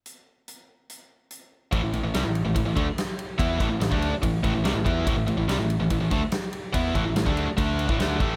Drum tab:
RD |----------------|x-x-x-x-x-x-x-x-|x-x-x-x-x-x-x-x-|x-x-x-x-x-x-x-x-|
HH |x---x---x---x---|----------------|----------------|----------------|
SD |----------------|----o-------o---|--o-o-------o---|----o-------o---|
BD |----------------|o-------o-o-----|o-o--o--o-o---o-|o-------o-o-----|

RD |x-x-x-x-x-x-x-x-|
HH |----------------|
SD |----o-------o---|
BD |o-o--o--o--o--o-|